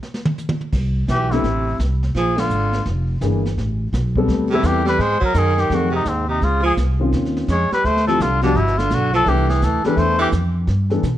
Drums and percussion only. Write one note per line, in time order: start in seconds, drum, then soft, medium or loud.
0.03 snare soft
0.14 snare soft
0.25 high tom loud
0.38 hi-hat pedal medium
0.38 high tom soft
0.49 high tom loud
0.61 high tom soft
0.72 brush sweep soft
0.72 kick medium
0.72 snare soft
0.72 crash medium
1.08 kick soft
1.08 snare medium
1.08 hi-hat pedal soft
1.31 snare soft
1.44 brush sweep soft
1.44 kick soft
1.44 snare soft
1.79 kick soft
1.79 snare soft
1.79 hi-hat pedal medium
2.03 snare soft
2.15 brush sweep soft
2.15 kick soft
2.15 snare soft
2.38 snare medium
2.38 ride medium
2.50 hi-hat pedal medium
2.73 snare soft
2.85 brush sweep soft
2.85 kick soft
2.85 snare soft
3.21 kick soft
3.21 snare medium
3.21 hi-hat pedal soft
3.46 snare soft
3.57 brush sweep soft
3.57 kick soft
3.57 snare soft
3.93 kick soft
3.93 snare medium
3.93 hi-hat pedal medium
4.16 kick soft
4.28 brush sweep soft
4.28 kick soft
4.28 snare soft
4.51 snare soft
4.63 kick soft
4.63 snare medium
4.63 hi-hat pedal medium
4.87 snare soft
4.99 brush sweep soft
4.99 kick soft
4.99 snare soft
5.22 kick medium
5.34 kick soft
5.34 snare medium
5.34 hi-hat pedal medium
5.58 snare soft
5.70 brush sweep soft
5.70 kick soft
5.70 snare soft
6.05 kick soft
6.05 snare soft
6.05 hi-hat pedal soft
6.41 brush sweep soft
6.41 kick soft
6.41 snare soft
6.77 kick soft
6.77 snare medium
6.77 hi-hat pedal soft
7.13 brush sweep soft
7.13 kick soft
7.13 snare soft
7.25 snare soft
7.37 snare soft
7.48 kick soft
7.48 snare medium
7.48 hi-hat pedal soft
7.72 snare soft
7.84 brush sweep soft
7.84 kick soft
7.84 snare soft
7.97 snare soft
8.08 snare soft
8.20 kick soft
8.20 snare medium
8.20 hi-hat pedal medium
8.43 snare soft
8.55 brush sweep soft
8.55 kick soft
8.55 snare soft
8.67 snare soft
8.79 snare soft
8.90 kick soft
8.90 snare medium
8.90 hi-hat pedal soft
9.14 snare soft
9.26 brush sweep soft
9.26 kick soft
9.26 snare soft
9.50 snare medium
9.62 kick soft
9.62 snare medium
9.62 hi-hat pedal soft
9.84 snare soft
9.97 brush sweep soft
9.97 kick soft
9.97 snare soft
10.32 kick soft
10.32 snare medium
10.32 hi-hat pedal medium
10.67 brush sweep soft
10.67 kick soft
10.67 snare soft
10.90 snare soft
11.03 snare soft
11.03 hi-hat pedal medium